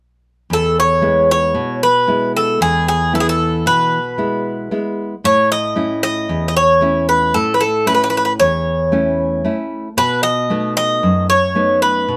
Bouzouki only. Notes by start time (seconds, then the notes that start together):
0.53 A4
0.80 C#5
1.31 C#5
1.83 B4
2.37 A4
2.62 G#4
2.88 G#4
3.15 A4
3.20 G#4
3.29 A4
3.67 B4
5.25 C#5
5.52 D#5
6.03 D#5
6.48 D#5
6.57 C#5
7.09 B4
7.34 A4
7.54 B4
7.61 A4
7.87 B4
7.95 B4
8.04 B4
8.10 B4
8.17 B4
8.25 B4
8.40 C#5
9.98 B4
10.23 D#5
10.77 D#5
11.30 C#5
11.82 B4